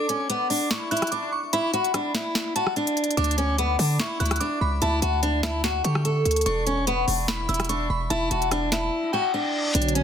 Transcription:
Already playing: D6
0.09 C#4, closed hi-hat
0.30 B3, closed hi-hat
0.50 D4, open hi-hat
0.71 E4 C#6, snare, closed hi-hat
0.91 E4 F#6, closed hi-hat
0.97 closed hi-hat
1.02 cross-stick, closed hi-hat
1.07 closed hi-hat
1.11 D4 D6, closed hi-hat
1.32 C#6
1.53 E4 B5, closed hi-hat
1.73 F#4, closed hi-hat
1.84 closed hi-hat
1.94 D4, cross-stick, closed hi-hat
2.15 E4, snare, closed hi-hat
2.35 snare, closed hi-hat
2.56 F#4 A5, closed hi-hat
2.67 cross-stick
2.76 D4, closed hi-hat
2.87 closed hi-hat
2.97 closed hi-hat
3.04 closed hi-hat
3.11 closed hi-hat
3.17 D2 D4 D6, closed hi-hat
3.24 closed hi-hat
3.31 closed hi-hat
3.38 C#4, closed hi-hat
3.58 B3, closed hi-hat
3.79 D3 D4, open hi-hat
4.00 E4 C#6, snare, closed hi-hat
4.20 D2 E4 F#6, closed hi-hat
4.26 closed hi-hat
4.31 cross-stick, closed hi-hat
4.36 closed hi-hat
4.40 D4 D6, closed hi-hat
4.61 C#2 B5
4.82 D2 E4 A5, closed hi-hat
5.02 D2 F#4, closed hi-hat
5.23 D4, closed hi-hat
5.43 E4, snare, closed hi-hat
5.64 F#4, snare, closed hi-hat
5.84 D3 G4 C#6, closed hi-hat
5.95 cross-stick
6.05 A4, closed hi-hat
6.25 D2, closed hi-hat
6.31 closed hi-hat
6.36 closed hi-hat
6.41 closed hi-hat
6.46 E1 D4 C#6, closed hi-hat
6.67 C#4, closed hi-hat
6.87 B3, closed hi-hat
7.08 E1 D4, open hi-hat
7.28 E4 B5, snare, closed hi-hat
7.49 E1 E4 E6, closed hi-hat
7.54 closed hi-hat
7.60 cross-stick, closed hi-hat
7.64 closed hi-hat
7.69 D4 C#6, closed hi-hat
7.90 E1 B5
8.10 E1 E4 A5, closed hi-hat
8.31 E1 F#4, closed hi-hat
8.42 closed hi-hat
8.51 D4, cross-stick, closed hi-hat
8.72 E4, snare, closed hi-hat
8.93 reverse cymbal
9.13 F#4 G5
9.34 D4
9.75 B1 D3 B3 D4 F#4 C#5, closed hi-hat
9.82 closed hi-hat
9.88 closed hi-hat
9.95 C#4, closed hi-hat

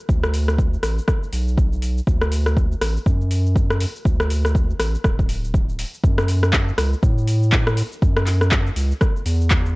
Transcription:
0.09 D2, kick, shaker
0.23 cross-stick, shaker
0.34 open hi-hat, shaker
0.48 cross-stick, shaker
0.58 kick, shaker
0.74 shaker
0.83 A1, cross-stick, open hi-hat, shaker
0.98 shaker
1.08 kick, cross-stick, shaker
1.23 shaker
1.33 B1, open hi-hat, shaker
1.48 shaker
1.58 kick, shaker
1.73 shaker
1.82 open hi-hat, shaker
1.98 shaker
2.07 D2, kick, shaker
2.22 cross-stick, shaker
2.32 open hi-hat, shaker
2.46 cross-stick, shaker
2.57 kick, shaker
2.72 shaker
2.81 A1, cross-stick, open hi-hat, shaker
2.97 shaker
3.06 F#2, kick, shaker
3.21 shaker
3.31 open hi-hat, shaker
3.46 shaker
3.56 kick, shaker
3.70 cross-stick, shaker
3.80 open hi-hat, shaker
3.96 shaker
4.05 D2, kick, shaker
4.20 cross-stick, shaker
4.30 open hi-hat, shaker
4.45 cross-stick, shaker
4.55 kick, shaker
4.70 shaker
4.80 A1, cross-stick, open hi-hat, shaker
4.95 shaker
5.04 D1, kick, cross-stick, shaker
5.19 kick, shaker
5.29 open hi-hat, shaker
5.44 shaker
5.54 kick, shaker
5.69 shaker
5.79 open hi-hat, shaker
5.94 shaker
6.04 F#2, kick, shaker
6.18 cross-stick, shaker
6.28 open hi-hat, shaker
6.43 cross-stick, shaker
6.53 kick, clap, shaker
6.68 shaker
6.78 C#2, cross-stick, open hi-hat, shaker
6.93 shaker
7.03 A2, kick, shaker
7.18 shaker
7.27 open hi-hat, shaker
7.43 shaker
7.52 kick, clap, shaker
7.67 cross-stick, shaker
7.77 open hi-hat, shaker
7.92 shaker
8.02 F#2, kick, shaker
8.17 cross-stick, shaker
8.27 clap, open hi-hat, shaker
8.41 cross-stick, shaker
8.51 kick, clap, shaker
8.67 shaker
8.76 C#2, open hi-hat, shaker
8.91 shaker
9.01 kick, cross-stick, shaker
9.16 shaker
9.26 E2, open hi-hat, shaker
9.41 shaker
9.51 kick, clap, shaker
9.66 shaker

